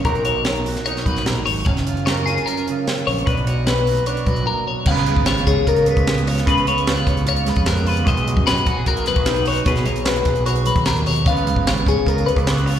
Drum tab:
CC |----------------|----------------|----------------|x---------------|
HH |xxx-xxoxxxxxxxo-|xxxxxxxxxxx-xxox|xxx-xxoxxxxx----|-xx-xxx-xxxxxxox|
SD |----o--o-o-oo---|-o--o-------o---|----o-----------|-o--oo------o--o|
BD |o---------o-----|o---------------|o---------o-----|o--o--o-o--o----|

CC |----------------|----------------|----------------|----------------|
HH |xxxxxxxxxxxxxxox|xxx-xxx-xxxxxxox|xxxxxxxxxxxxxxox|xxx-xxx-xxxxxxo-|
SD |----o-----o-o---|----o-----o-o---|-o--o-------o---|----o-------o---|
BD |o-----o----o----|o--o--o-o--o----|o-----o----o----|o--o--o-o--o----|